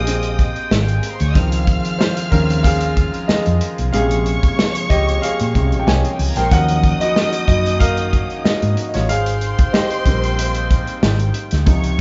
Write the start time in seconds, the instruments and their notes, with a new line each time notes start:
Already playing: fingered electric bass A#1, string section G#3 C4 G5, grand piano A#3 C4 G4 G#4 D#5 F5, violin section D#5 D#6
0.05 grand piano C4 G#4, closed hi-hat
0.23 closed hi-hat
0.39 kick, closed hi-hat
0.56 closed hi-hat
0.71 fingered electric bass G#1, snare
0.80 violin section F4 F5
0.88 violin section G4 G5, closed hi-hat
0.96 violin section G#4 G#5
1.03 violin section A#4 A#5, closed hi-hat
1.12 violin section C5 C6
1.20 fingered electric bass D2, violin section C#5 C#6, closed hi-hat
1.28 violin section D#5 D#6
1.35 fingered electric bass C#2, grand piano D#3 F3 C4, string section F3 F4 C5, violin section F5 F6, kick, closed hi-hat
1.52 closed hi-hat
1.67 kick, closed hi-hat
1.85 closed hi-hat
1.99 grand piano F4 C5, snare
2.17 closed hi-hat
2.31 fingered electric bass D#2, grand piano D#3 F3 C4 C#4 A#4, kick, closed hi-hat
2.50 closed hi-hat
2.63 grand piano G#4 F5, kick, closed hi-hat
2.81 closed hi-hat
2.97 kick, closed hi-hat
3.14 closed hi-hat
3.28 grand piano G#4 D#5, muted fingered electric bass stroke, snare
3.46 fingered electric bass F2, closed hi-hat
3.61 closed hi-hat
3.78 fingered electric bass B1, closed hi-hat
3.93 fingered electric bass A#1, grand piano C3 C#3 G#3 G#4 F5, string section A#3, violin section C#5 C#6, closed hi-hat
4.11 closed hi-hat
4.26 closed hi-hat
4.43 kick, closed hi-hat
4.59 snare
4.75 closed hi-hat
4.90 fingered electric bass C#2, grand piano G4 D#5, kick, closed hi-hat
5.09 closed hi-hat
5.22 grand piano G#4 F5, closed hi-hat
5.40 fingered electric bass A#2, closed hi-hat
5.55 fingered electric bass C2, grand piano C3 C#3 G#3, kick, closed hi-hat
5.72 fingered electric bass A#1, closed hi-hat
5.80 grand piano G5
5.87 fingered electric bass C2, grand piano C#5 G#5, snare
5.96 violin section D#4 D#5
6.05 violin section F4 F5, closed hi-hat
6.13 violin section G4 G5
6.19 fingered electric bass C#2, violin section G#4 G#5, open hi-hat
6.29 violin section A#4 A#5
6.36 fingered electric bass A#1, grand piano A#4 G5, violin section C5 C6, snare, closed hi-hat
6.45 violin section C#5 C#6
6.51 fingered electric bass D#2, string section D#3 A#3 C#4 D#4, grand piano F3 F#3 C#4 A#4 F#5, violin section D#5 D#6, kick, closed hi-hat
6.68 closed hi-hat
6.84 kick, closed hi-hat
7.01 grand piano F#4 D#5, closed hi-hat
7.16 snare
7.33 closed hi-hat
7.48 fingered electric bass F#2, grand piano F#4 D#5, kick, closed hi-hat
7.66 closed hi-hat
7.80 grand piano A#4 F5, kick, closed hi-hat
7.97 closed hi-hat
8.13 kick, closed hi-hat
8.30 closed hi-hat
8.44 grand piano F#4 D#5, muted fingered electric bass stroke, snare
8.62 fingered electric bass G#2, closed hi-hat
8.77 closed hi-hat
8.89 grand piano D#5
8.94 fingered electric bass A1, grand piano F4 C#5, snare, closed hi-hat
9.09 fingered electric bass G#1, string section D#3 C4 G5, grand piano G#4 F5, violin section C5 C6, closed hi-hat
9.26 closed hi-hat
9.41 closed hi-hat
9.59 kick, closed hi-hat
9.73 grand piano G4 D#5, snare
9.91 closed hi-hat
10.06 fingered electric bass A#1, grand piano G3 A#3 C4, kick, closed hi-hat
10.24 closed hi-hat
10.39 closed hi-hat
10.55 closed hi-hat
10.71 kick, closed hi-hat
10.87 closed hi-hat
11.03 fingered electric bass G#1, snare
11.19 closed hi-hat
11.34 closed hi-hat
11.51 fingered electric bass D2, snare, closed hi-hat
11.66 fingered electric bass C#2, grand piano C3 F3 D#4, string section F3 F4, violin section C#5 C#6, kick, closed hi-hat
11.84 closed hi-hat